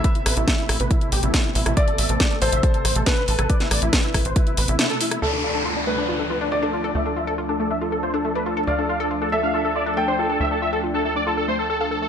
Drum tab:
HH |xxoxxxoxxxoxxxox|xxoxxxoxxxoxxxox|xxoxxxoxxxoxxxox|----------------|
SD |--r-o-r-----o--r|----o-----r-o--r|-or-o-r-----o--r|----------------|
BD |o---o---o---o---|o---o---o---o---|o---o-o-o-------|----------------|

HH |----------------|----------------|----------------|
SD |----------------|----------------|----------------|
BD |----------------|----------------|----------------|